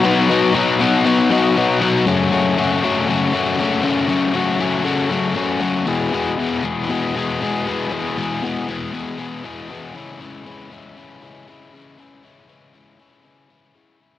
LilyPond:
\new Staff \with { instrumentName = "Overdriven electric guitar" } { \clef bass \time 4/4 \key e \major \tempo 4 = 118 <b, fis b dis' fis'>8 <b, fis b dis' fis'>8 <b, fis b dis' fis'>8 <b, fis b dis' fis'>8 <b, fis b dis' fis'>8 <b, fis b dis' fis'>8 <b, fis b dis' fis'>8 <b, fis b dis' fis'>8 | <fis, cis fis a cis' fis'>8 <fis, cis fis a cis' fis'>8 <fis, cis fis a cis' fis'>8 <fis, cis fis a cis' fis'>8 <fis, cis fis a cis' fis'>8 <fis, cis fis a cis' fis'>8 <fis, cis fis a cis' fis'>8 <fis, cis fis a cis' fis'>8 | <fis, cis fis a cis' fis'>8 <fis, cis fis a cis' fis'>8 <fis, cis fis a cis' fis'>8 <fis, cis fis a cis' fis'>8 <fis, cis fis a cis' fis'>8 <fis, cis fis a cis' fis'>8 <fis, cis fis a cis' fis'>8 <e, b, e gis b gis'>8 | <e, b, e gis b gis'>8 <e, b, e gis b gis'>8 <e, b, e gis b gis'>8 <e, b, e gis b gis'>8 <e, b, e gis b gis'>8 <e, b, e gis b gis'>8 <e, b, e gis b gis'>8 <e, b, e gis b gis'>8 |
<e, b, e gis b gis'>8 <e, b, e gis b gis'>8 <e, b, e gis b gis'>8 <e, b, e gis b gis'>8 <e, b, e gis b gis'>8 <e, b, e gis b gis'>8 <e, b, e gis b gis'>8 <cis e gis cis' e'>8 | <cis e gis cis' e'>8 <cis e gis cis' e'>8 <cis e gis cis' e'>8 <cis e gis cis' e'>8 <cis e gis cis' e'>8 <cis e gis cis' e'>8 <cis e gis cis' e'>8 <cis e gis cis' e'>8 | <cis e gis cis' e'>8 <cis e gis cis' e'>8 <cis e gis cis' e'>8 <cis e gis cis' e'>8 <cis e gis cis' e'>8 <cis e gis cis' e'>8 <cis e gis cis' e'>8 <cis e gis cis' e'>8 | }